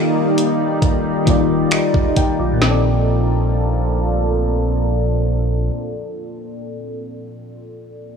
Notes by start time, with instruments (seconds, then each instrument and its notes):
Already playing: fm electric piano D#3 A#3 F4 G4 A4 D5 F5, ambient pad D#3 G3 A#3 D#4 G4
0.38 closed hi-hat
0.82 kick, closed hi-hat
1.05 sub bass D1
1.25 sub bass D1, fm electric piano D#3 A#3 F4 G4, kick, closed hi-hat
1.30 fm electric piano D5
1.71 sub bass D#1, fm electric piano G4 D#5, finger snap, closed hi-hat
1.94 sub bass D#1, kick
2.16 fm electric piano A#4 G5, kick, closed hi-hat
2.39 sub bass B1, fm electric piano F4 D5
2.53 fm electric piano A#2
2.57 sub bass A#1, ambient pad A#2 F3 A#3 D4 A4, fm electric piano A#3
2.62 fm electric piano C4, snare
2.66 fm electric piano A4
2.71 fm electric piano D5